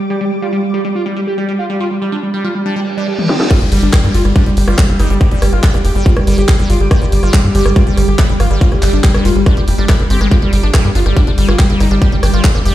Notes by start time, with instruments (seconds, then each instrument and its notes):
Already playing: synth drone G3 G4
0.10 acid bass G3, analog synth lead G4
0.21 acid bass G3, analog synth lead G3
0.31 analog synth lead G3
0.42 acid bass G3, analog synth lead F4
0.53 acid bass G3, analog synth lead G3
0.63 analog synth lead G3
0.74 acid bass G3, analog synth lead G4
0.85 acid bass G3, analog synth lead G3
0.95 analog synth lead F4
1.06 acid bass G3, analog synth lead G3
1.17 acid bass G3, analog synth lead G3
1.27 analog synth lead G4
1.38 acid bass G3, analog synth lead G3
1.48 analog synth lead G3, acid bass G3
1.59 analog synth lead F4
1.70 analog synth lead G3, acid bass G3
1.80 acid bass G3, analog synth lead F4
1.91 analog synth lead G3
2.02 analog synth lead G3, acid bass G3
2.12 acid bass G3, analog synth lead D4
2.23 analog synth lead G3
2.34 analog synth lead G3, acid bass G3
2.44 acid bass G3, analog synth lead F4
2.55 analog synth lead G3
2.65 acid bass G3, analog synth lead D4, reverse cymbal
2.76 acid bass G3, analog synth lead G3
2.87 analog synth lead G3
2.97 acid bass G3, analog synth lead D4
3.08 analog synth lead G3
3.19 analog synth lead G3, high tom
3.29 analog synth lead C4, snare
3.40 analog synth lead G3, snare
3.51 acid bass G3, synth drone G3 G4, analog synth lead F4, kick, cross-stick, closed hi-hat, crash, downlifter
3.61 analog synth bass G1, analog synth lead G3, closed hi-hat
3.72 analog synth bass G1, acid bass G3, analog synth lead G3, open hi-hat
3.82 analog synth bass G1, acid bass G3, analog synth lead D4, closed hi-hat
3.93 analog synth lead G3, kick, cross-stick, clap, closed hi-hat
4.04 analog synth bass G2, acid bass G3, analog synth lead G3, closed hi-hat
4.14 analog synth bass G1, acid bass G3, analog synth lead F4, open hi-hat
4.25 analog synth bass G1, analog synth lead G3, cross-stick, closed hi-hat
4.36 acid bass G3, analog synth lead D4, kick, closed hi-hat
4.46 analog synth bass G1, acid bass G3, analog synth lead G3, closed hi-hat
4.57 analog synth bass G1, analog synth lead G3, open hi-hat
4.68 analog synth bass G1, acid bass G3, analog synth lead F4, cross-stick, closed hi-hat
4.78 acid bass G3, analog synth lead G3, kick, clap, closed hi-hat
4.89 analog synth bass G1, analog synth lead G3, closed hi-hat
5.00 analog synth bass G1, acid bass G3, analog synth lead D#4, cross-stick, open hi-hat
5.10 analog synth bass G1, acid bass G3, analog synth lead G3, closed hi-hat
5.21 analog synth lead G4, kick, closed hi-hat
5.31 analog synth bass G1, acid bass G3, analog synth lead G3, closed hi-hat
5.42 analog synth bass G1, acid bass G3, analog synth lead G3, cross-stick, open hi-hat
5.53 analog synth bass G1, analog synth lead F4, closed hi-hat
5.63 analog synth lead G3, acid bass G3, kick, clap, closed hi-hat
5.74 analog synth bass G1, analog synth lead G3, acid bass G3, cross-stick, closed hi-hat
5.85 analog synth bass F1, analog synth lead G4, open hi-hat
5.95 analog synth bass G1, acid bass G3, analog synth lead G3, closed hi-hat
6.06 acid bass G3, analog synth lead F4, kick, closed hi-hat
6.17 analog synth bass G1, analog synth lead G3, cross-stick, closed hi-hat
6.27 analog synth bass G1, acid bass G3, analog synth lead G3, open hi-hat
6.38 analog synth bass G1, acid bass G3, analog synth lead G4, closed hi-hat
6.48 analog synth lead G3, kick, cross-stick, clap, closed hi-hat
6.59 analog synth bass G1, acid bass G3, analog synth lead G3, closed hi-hat
6.70 analog synth bass G1, acid bass G3, analog synth lead F4, open hi-hat
6.80 analog synth bass G1, analog synth lead G3, closed hi-hat
6.91 acid bass G3, analog synth lead G4, kick, cross-stick, closed hi-hat
7.02 analog synth bass G1, acid bass G3, analog synth lead G3, closed hi-hat
7.12 analog synth bass G1, analog synth lead G3, open hi-hat
7.23 analog synth bass G1, acid bass G3, analog synth lead F4, cross-stick
7.34 acid bass G3, analog synth lead G3, kick, clap, closed hi-hat
7.44 analog synth bass G2, analog synth lead G3, closed hi-hat
7.55 analog synth bass G1, acid bass G3, analog synth lead G4, open hi-hat
7.65 analog synth bass G1, acid bass G3, analog synth lead G3, cross-stick, closed hi-hat
7.76 analog synth lead F4, kick, closed hi-hat
7.87 analog synth bass G1, acid bass G3, analog synth lead G3, closed hi-hat
7.97 analog synth bass G1, acid bass G3, analog synth lead G3, cross-stick, open hi-hat
8.08 analog synth bass G1, analog synth lead G4, closed hi-hat
8.19 acid bass G3, analog synth lead G3, kick, clap, closed hi-hat
8.29 analog synth bass G1, acid bass G3, analog synth lead G3, closed hi-hat
8.40 analog synth bass G1, analog synth lead F4, cross-stick, open hi-hat
8.51 analog synth bass G1, acid bass G3, analog synth lead G3, closed hi-hat
8.61 acid bass G3, analog synth lead F4, kick, closed hi-hat
8.72 analog synth bass G1, analog synth lead G3, cross-stick, closed hi-hat
8.82 analog synth bass G1, acid bass G3, analog synth lead G3, clap, open hi-hat
8.93 analog synth bass G1, acid bass G3, analog synth lead D4, closed hi-hat
9.04 analog synth lead G3, kick, clap, closed hi-hat
9.14 analog synth bass G1, acid bass G3, analog synth lead G3, cross-stick, closed hi-hat
9.25 analog synth bass F1, acid bass G3, analog synth lead F4, open hi-hat
9.36 analog synth bass G1, analog synth lead G3, closed hi-hat
9.46 acid bass G3, analog synth lead D4, kick, cross-stick, closed hi-hat
9.57 analog synth bass G1, analog synth lead G3, acid bass G3, closed hi-hat
9.68 analog synth bass F1, analog synth lead G3, open hi-hat
9.78 analog synth bass G1, acid bass G3, analog synth lead D4, closed hi-hat
9.89 analog synth lead G3, acid bass G3, kick, cross-stick, clap, closed hi-hat
9.99 analog synth bass G1, analog synth lead G3, closed hi-hat
10.10 analog synth bass G1, analog synth lead C4, acid bass G4, open hi-hat
10.21 analog synth bass G1, analog synth lead G3, acid bass G#3, cross-stick, closed hi-hat
10.31 synth drone C4, acid bass D4, analog synth lead F4, kick, cross-stick, closed hi-hat
10.42 analog synth bass G1, acid bass G3, analog synth lead G3, closed hi-hat
10.53 analog synth bass G1, analog synth lead G3, acid bass G3, open hi-hat
10.63 analog synth bass G1, analog synth lead D4, acid bass D4, closed hi-hat
10.74 analog synth lead G3, acid bass G3, kick, cross-stick, clap, closed hi-hat
10.85 analog synth bass G2, acid bass G3, analog synth lead G3, closed hi-hat
10.95 analog synth bass G1, acid bass D4, analog synth lead F4, open hi-hat
11.06 analog synth bass G1, analog synth lead G3, acid bass G3, cross-stick, closed hi-hat
11.17 acid bass G3, analog synth lead D4, kick, closed hi-hat
11.27 analog synth bass G1, analog synth lead G3, acid bass D4, closed hi-hat
11.38 analog synth bass G1, analog synth lead G3, acid bass G3, open hi-hat
11.48 analog synth bass G1, acid bass G3, analog synth lead F4, cross-stick, closed hi-hat
11.59 analog synth lead G3, acid bass D4, kick, clap, closed hi-hat
11.70 analog synth bass G1, analog synth lead G3, acid bass G3, closed hi-hat
11.80 analog synth bass G1, acid bass G3, analog synth lead D#4, cross-stick, open hi-hat
11.91 analog synth bass G1, analog synth lead G3, acid bass D4, closed hi-hat
12.02 acid bass G3, analog synth lead G4, kick, closed hi-hat
12.12 analog synth bass G1, analog synth lead G3, acid bass G3, closed hi-hat
12.23 analog synth bass G1, analog synth lead G3, acid bass D4, cross-stick, open hi-hat
12.34 analog synth bass G1, acid bass G3, analog synth lead F4
12.44 acid bass G3, analog synth lead G3, kick, clap, closed hi-hat
12.55 analog synth bass G1, analog synth lead G3, acid bass D4, cross-stick, closed hi-hat
12.65 analog synth bass F1, acid bass G3, analog synth lead G4, open hi-hat